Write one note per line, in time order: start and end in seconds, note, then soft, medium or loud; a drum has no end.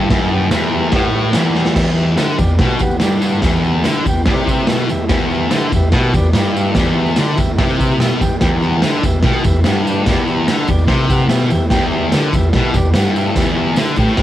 0.10 0.51 F#2 loud
0.10 0.26 G4 loud
0.10 0.26 B4 loud
0.10 0.26 E5 loud
0.10 kick loud
0.10 snare loud
0.10 crash medium
0.33 0.47 G4 medium
0.33 0.47 B4 medium
0.33 0.47 G5 medium
0.51 0.92 E2 loud
0.51 0.67 G4 medium
0.51 0.68 B4 medium
0.51 0.68 E5 medium
0.51 snare loud
0.51 tambourine medium
0.51 crash medium
0.72 0.88 G4 medium
0.72 0.88 B4 medium
0.72 0.88 E5 medium
0.92 1.34 A2 loud
0.92 1.09 G4 loud
0.92 1.09 B4 loud
0.92 1.10 F#5 loud
0.92 kick loud
0.92 snare loud
0.92 crash medium
1.14 1.29 G4 medium
1.14 1.30 B4 medium
1.14 1.30 E5 medium
1.33 1.74 E2 loud
1.33 1.50 G4 medium
1.33 1.50 B4 medium
1.33 1.50 E5 medium
1.33 snare loud
1.33 tambourine medium
1.33 crash medium
1.55 1.72 G4 medium
1.55 1.72 B4 medium
1.55 1.72 E5 medium
1.55 snare medium
1.65 snare medium
1.74 2.17 E2 medium
1.74 1.91 G4 loud
1.74 1.90 B4 medium
1.74 1.91 E5 loud
1.74 kick loud
1.74 snare loud
1.74 crash loud
1.74 tambourine medium
1.95 2.11 G4 medium
1.95 2.12 B4 medium
1.95 2.12 E5 medium
1.95 tambourine soft
2.15 2.38 D3 loud
2.15 2.32 G4 medium
2.15 2.33 B4 medium
2.15 2.32 E5 medium
2.15 snare loud
2.15 open hi-hat medium
2.15 tambourine medium
2.38 2.56 E2 medium
2.38 2.54 G4 medium
2.38 2.54 B4 medium
2.38 2.54 D5 medium
2.38 kick medium
2.38 tambourine medium
2.49 tambourine soft
2.59 2.80 B2 loud
2.59 2.75 G4 medium
2.59 2.75 B4 medium
2.59 2.75 F#5 loud
2.59 kick loud
2.59 snare loud
2.59 open hi-hat medium
2.79 2.98 E2 medium
2.79 2.96 G4 loud
2.79 2.96 B4 medium
2.79 2.97 F#5 loud
2.79 kick medium
2.79 tambourine medium
2.91 tambourine soft
3.00 3.42 G2 loud
3.00 3.17 G4 loud
3.00 3.17 B4 medium
3.00 3.17 D5 loud
3.00 snare loud
3.00 open hi-hat medium
3.00 tambourine medium
3.22 3.38 G4 medium
3.22 3.38 B4 medium
3.22 3.38 F#5 medium
3.22 tambourine medium
3.42 3.84 E2 loud
3.42 3.59 G4 loud
3.42 3.60 B4 loud
3.42 kick loud
3.42 snare loud
3.42 open hi-hat medium
3.42 tambourine medium
3.47 3.60 E5 loud
3.63 3.79 G4 medium
3.63 3.79 B4 medium
3.63 3.80 E5 medium
3.63 tambourine soft
3.84 4.05 D3 loud
3.84 4.00 G4 medium
3.84 4.00 B4 medium
3.84 4.00 E5 medium
3.84 snare loud
3.84 open hi-hat medium
3.84 tambourine medium
3.95 tambourine soft
4.05 4.22 E2 medium
4.05 4.21 G4 medium
4.05 4.22 B4 medium
4.05 4.22 G5 medium
4.05 kick medium
4.05 tambourine medium
4.26 4.67 C3 loud
4.26 4.43 G4 medium
4.26 kick loud
4.26 snare loud
4.26 open hi-hat medium
4.30 4.43 B4 medium
4.30 4.44 D5 loud
4.47 4.64 G4 medium
4.47 4.64 B4 loud
4.47 4.64 E5 loud
4.47 kick medium
4.47 tambourine medium
4.59 tambourine soft
4.67 4.88 B2 loud
4.67 4.83 G4 loud
4.67 4.84 B4 medium
4.67 4.84 E5 loud
4.67 snare loud
4.67 open hi-hat medium
4.67 tambourine medium
4.89 5.06 E2 medium
4.89 5.04 G4 medium
4.89 5.05 B4 medium
4.89 5.05 E5 medium
4.89 tambourine medium
5.09 5.50 E2 loud
5.09 5.25 G4 medium
5.09 5.25 B4 medium
5.09 5.25 E5 loud
5.09 kick loud
5.09 snare loud
5.09 open hi-hat medium
5.09 tambourine medium
5.31 5.46 G4 medium
5.31 5.46 B4 medium
5.31 5.46 E5 medium
5.31 tambourine soft
5.50 5.71 D3 loud
5.50 snare loud
5.50 open hi-hat medium
5.50 tambourine medium
5.54 5.68 G4 medium
5.54 5.68 B4 medium
5.54 5.68 E5 medium
5.62 tambourine soft
5.72 5.89 E2 medium
5.72 5.89 G4 medium
5.72 5.89 B4 medium
5.72 5.89 E5 medium
5.72 kick medium
5.72 tambourine medium
5.82 tambourine soft
5.92 6.13 B2 loud
5.92 kick loud
5.92 snare loud
5.92 open hi-hat medium
5.97 6.10 G4 medium
5.97 6.10 B4 medium
5.97 6.11 E5 loud
6.14 6.31 E2 medium
6.14 6.29 G4 medium
6.14 6.29 B4 medium
6.14 6.30 D5 loud
6.14 kick medium
6.14 tambourine medium
6.25 tambourine soft
6.33 6.75 G2 loud
6.33 6.50 G4 loud
6.33 6.50 B4 loud
6.33 6.51 D5 loud
6.33 snare loud
6.33 open hi-hat medium
6.33 tambourine medium
6.56 6.71 G4 medium
6.56 6.71 B4 medium
6.56 6.71 E5 medium
6.56 tambourine medium
6.74 7.17 E2 loud
6.74 6.90 G4 medium
6.74 6.91 B4 medium
6.74 6.91 D5 loud
6.74 kick loud
6.74 snare loud
6.74 open hi-hat medium
6.74 tambourine medium
6.86 tambourine soft
6.93 7.10 G4 medium
6.93 7.11 B4 medium
6.93 7.11 E5 medium
7.06 tambourine soft
7.15 7.38 D3 loud
7.15 7.32 G4 medium
7.15 7.32 B4 medium
7.15 7.33 D5 medium
7.15 snare loud
7.15 open hi-hat medium
7.15 tambourine medium
7.35 7.55 E2 medium
7.35 7.52 G4 medium
7.35 7.52 B4 medium
7.35 7.52 E5 medium
7.35 kick medium
7.35 tambourine medium
7.57 7.99 C3 loud
7.57 7.73 G4 medium
7.57 7.74 B4 medium
7.57 7.74 E5 medium
7.57 kick loud
7.57 snare loud
7.57 open hi-hat medium
7.57 tambourine soft
7.70 tambourine soft
7.79 7.94 G4 medium
7.79 7.95 B4 medium
7.79 7.95 E5 loud
7.79 kick medium
7.79 tambourine medium
7.99 8.20 B2 loud
7.99 8.15 G4 loud
7.99 8.15 B4 medium
7.99 8.15 E5 loud
7.99 snare loud
7.99 open hi-hat medium
7.99 tambourine medium
8.20 8.38 E2 medium
8.20 8.36 G4 medium
8.20 8.36 B4 medium
8.20 8.36 G5 medium
8.20 kick medium
8.20 tambourine medium
8.40 8.82 E2 loud
8.40 8.56 G4 loud
8.40 8.56 B4 medium
8.40 8.57 G5 loud
8.40 kick loud
8.40 snare loud
8.40 open hi-hat medium
8.40 tambourine medium
8.61 8.77 G4 medium
8.61 8.77 B4 medium
8.61 8.77 F#5 medium
8.61 tambourine soft
8.82 9.03 D3 loud
8.82 8.98 G4 medium
8.82 8.98 B4 medium
8.82 8.99 E5 medium
8.82 snare loud
8.82 open hi-hat medium
8.82 tambourine medium
8.94 tambourine soft
9.03 9.21 E2 medium
9.03 9.19 G4 medium
9.03 9.20 B4 medium
9.03 9.20 E5 medium
9.03 kick medium
9.03 tambourine medium
9.13 tambourine soft
9.23 9.44 B2 loud
9.23 9.40 G4 medium
9.23 9.40 B4 medium
9.23 kick loud
9.23 snare loud
9.23 open hi-hat medium
9.27 9.41 G5 medium
9.44 9.61 E2 medium
9.44 9.60 G4 loud
9.44 9.61 B4 medium
9.44 9.60 E5 loud
9.44 kick medium
9.44 tambourine medium
9.64 10.06 G2 loud
9.64 9.81 G4 loud
9.64 9.82 B4 medium
9.64 9.82 F#5 loud
9.64 snare loud
9.64 open hi-hat soft
9.64 tambourine medium
9.87 10.03 G4 medium
9.87 10.03 B4 medium
9.87 10.03 D5 medium
9.87 tambourine medium
10.06 10.48 E2 loud
10.06 10.23 G4 loud
10.06 10.23 B4 loud
10.06 10.23 D5 loud
10.06 kick loud
10.06 snare loud
10.06 open hi-hat medium
10.06 tambourine medium
10.27 10.43 G4 medium
10.27 10.43 B4 medium
10.27 10.43 E5 medium
10.27 tambourine soft
10.48 10.68 D3 loud
10.48 10.63 G4 medium
10.48 10.64 B4 medium
10.48 10.64 F#5 medium
10.48 snare loud
10.48 open hi-hat medium
10.48 tambourine medium
10.68 10.85 E2 medium
10.68 10.83 G4 medium
10.68 10.84 B4 medium
10.68 10.85 D5 loud
10.68 kick medium
10.68 tambourine medium
10.79 tambourine soft
10.87 11.29 C3 loud
10.87 11.05 G4 medium
10.87 11.05 E5 medium
10.87 kick loud
10.87 snare loud
10.87 open hi-hat medium
10.92 11.06 B4 medium
11.09 11.25 G4 loud
11.09 11.25 B4 medium
11.09 11.25 F#5 loud
11.09 kick medium
11.09 tambourine medium
11.20 tambourine soft
11.28 11.50 B2 loud
11.28 11.45 G4 loud
11.28 11.45 B4 loud
11.28 11.45 E5 loud
11.28 snare loud
11.28 open hi-hat medium
11.28 tambourine medium
11.49 11.68 E2 medium
11.49 11.65 G4 medium
11.49 11.65 B4 medium
11.49 11.66 E5 medium
11.49 tambourine medium
11.69 12.12 E2 loud
11.69 11.86 G4 loud
11.69 11.87 B4 loud
11.69 11.86 G5 loud
11.69 kick loud
11.69 snare loud
11.69 open hi-hat medium
11.69 tambourine medium
11.91 12.07 G4 medium
11.91 12.07 B4 medium
11.91 12.07 E5 medium
12.12 12.33 D3 loud
12.12 12.28 G4 medium
12.12 12.29 B4 medium
12.12 12.29 D5 medium
12.12 snare loud
12.12 open hi-hat medium
12.12 tambourine medium
12.23 tambourine soft
12.33 12.50 E2 medium
12.33 12.49 G4 medium
12.33 12.49 B4 medium
12.33 12.49 E5 loud
12.33 kick medium
12.33 tambourine medium
12.43 tambourine soft
12.53 12.75 B2 loud
12.53 12.70 G4 medium
12.53 12.70 B4 medium
12.53 12.70 E5 medium
12.53 kick loud
12.53 snare loud
12.53 open hi-hat medium
12.74 12.91 E2 medium
12.74 12.89 G4 medium
12.74 12.90 B4 medium
12.74 12.90 D5 loud
12.74 kick medium
12.74 tambourine medium
12.85 tambourine soft
12.94 13.36 G2 loud
12.94 13.10 G4 loud
12.94 13.10 B4 loud
12.94 13.11 F#5 loud
12.94 snare loud
12.94 open hi-hat medium
12.94 tambourine loud
13.16 13.31 G4 medium
13.16 13.32 B4 medium
13.16 13.31 E5 medium
13.16 tambourine medium
13.36 13.77 E2 loud
13.36 13.51 G4 loud
13.36 13.51 B4 medium
13.36 13.52 E5 loud
13.36 kick loud
13.36 snare loud
13.36 open hi-hat medium
13.36 tambourine medium
13.46 tambourine soft
13.56 13.71 G4 medium
13.56 13.72 B4 medium
13.56 13.72 E5 medium
13.76 13.97 D3 loud
13.76 13.92 G4 medium
13.76 13.93 B4 medium
13.76 13.92 E5 medium
13.76 snare loud
13.76 open hi-hat medium
13.76 tambourine medium
13.96 14.23 A2 loud
13.96 14.13 G4 medium
13.96 14.13 B4 medium
13.96 14.13 G5 medium
13.96 kick medium
13.96 tambourine medium
14.08 tambourine soft
14.17 14.23 G4 medium
14.17 14.23 B4 medium
14.17 kick loud
14.17 snare loud
14.17 open hi-hat medium
14.17 tambourine soft